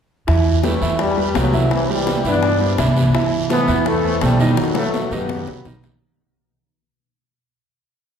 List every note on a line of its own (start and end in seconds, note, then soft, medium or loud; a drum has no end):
0.27 0.78 E2 medium
0.27 0.57 E3 medium
0.27 0.57 E4 medium
0.27 0.57 E5 medium
0.27 high bongo medium
0.27 high conga soft
0.27 long guiro medium
0.46 high conga soft
0.63 0.98 E3 medium
0.63 0.78 G3 medium
0.63 0.98 A3 medium
0.63 0.78 G4 medium
0.63 0.79 B4 medium
0.63 high bongo medium
0.63 high conga medium
0.63 short guiro medium
0.82 1.32 E2 medium
0.82 1.11 E3 medium
0.82 1.11 E4 medium
0.82 1.11 E5 medium
0.82 high conga soft
0.82 short guiro medium
0.99 1.34 E3 medium
0.99 1.33 G3 medium
0.99 high bongo medium
0.99 high conga soft
0.99 long guiro medium
1.17 1.32 G3 medium
1.17 1.32 G4 medium
1.17 1.32 B4 medium
1.17 high conga soft
1.34 1.67 C2 medium
1.34 1.70 D3 medium
1.34 1.70 F#3 medium
1.34 1.50 G3 medium
1.34 1.50 G4 medium
1.34 1.50 B4 medium
1.34 high bongo medium
1.34 low bongo medium
1.34 high conga medium
1.34 short guiro medium
1.53 1.83 E3 medium
1.53 1.83 E4 medium
1.53 1.83 E5 medium
1.53 high conga medium
1.53 short guiro medium
1.71 1.89 C3 medium
1.71 1.89 E3 medium
1.71 high bongo medium
1.71 high conga soft
1.71 long guiro medium
1.89 2.26 E3 medium
1.89 2.19 G3 medium
1.89 2.26 G3 medium
1.89 2.19 G4 medium
1.89 2.20 C5 medium
1.89 high bongo soft
1.89 high conga soft
2.07 high bongo medium
2.07 high conga medium
2.07 short guiro medium
2.24 2.75 G2 medium
2.24 2.54 E3 medium
2.24 2.76 B3 medium
2.24 2.76 D4 loud
2.24 2.55 E4 medium
2.24 2.55 E5 medium
2.24 high bongo soft
2.24 high conga soft
2.24 short guiro medium
2.42 high bongo medium
2.42 high conga soft
2.42 long guiro medium
2.61 2.75 G3 medium
2.61 2.76 G4 medium
2.61 2.76 C5 medium
2.61 high bongo soft
2.61 high conga soft
2.78 3.10 C2 medium
2.78 3.08 E3 medium
2.78 3.08 E4 medium
2.78 3.08 E5 medium
2.78 high bongo medium
2.78 low bongo medium
2.78 high conga medium
2.78 short guiro medium
2.97 high conga medium
2.97 short guiro medium
3.15 3.44 E3 medium
3.15 3.44 E4 medium
3.15 3.44 E5 medium
3.15 high bongo medium
3.15 high conga soft
3.15 long guiro medium
3.33 high conga soft
3.50 3.85 E3 medium
3.50 3.65 A3 medium
3.50 3.84 B3 loud
3.50 3.65 A4 medium
3.50 3.65 C5 medium
3.50 high bongo medium
3.50 high conga medium
3.50 short guiro medium
3.68 4.18 E2 medium
3.68 3.98 E3 medium
3.68 3.98 E4 medium
3.68 3.98 E5 medium
3.68 high conga soft
3.68 short guiro medium
3.86 4.23 E3 medium
3.86 4.23 A3 loud
3.86 high bongo medium
3.86 high conga soft
3.86 long guiro medium
4.04 4.19 A3 medium
4.04 4.19 A4 medium
4.04 4.19 C5 medium
4.04 high conga soft
4.21 4.54 B1 medium
4.21 4.57 E3 medium
4.21 4.56 G3 medium
4.21 4.37 A3 medium
4.21 4.37 A4 medium
4.21 4.37 C5 medium
4.21 high bongo medium
4.21 low bongo medium
4.21 high conga medium
4.21 short guiro medium
4.40 4.70 D#3 medium
4.40 4.70 D#4 medium
4.40 4.70 D#5 medium
4.40 high conga medium
4.40 short guiro medium
4.57 4.77 D#3 medium
4.57 4.77 F#3 medium
4.57 high bongo medium
4.57 high conga soft
4.57 long guiro medium
4.75 5.06 F#3 medium
4.75 5.11 F#3 medium
4.75 5.10 A3 loud
4.75 5.06 F#4 medium
4.75 5.06 B4 medium
4.75 high bongo medium
4.75 high conga soft
4.94 high conga medium
4.94 short guiro medium
5.11 5.45 F#2 medium
5.11 5.42 D#3 medium
5.11 5.67 B3 medium
5.11 5.42 D#4 medium
5.11 5.67 G4 medium
5.11 5.42 D#5 medium
5.11 high conga soft
5.11 short guiro medium
5.29 low bongo loud
5.29 high conga soft
5.29 long guiro medium
5.47 5.65 C2 medium
5.47 5.63 F#3 medium
5.47 5.63 F#4 medium
5.47 5.63 B4 medium
5.47 low bongo medium
5.47 high conga soft
5.65 5.98 B1 medium
5.65 5.96 D#3 medium
5.65 5.96 D#4 medium
5.65 5.96 D#5 medium
5.65 low bongo medium
5.65 high conga medium
5.65 short guiro medium
5.83 low bongo medium
5.83 high conga medium
5.83 short guiro medium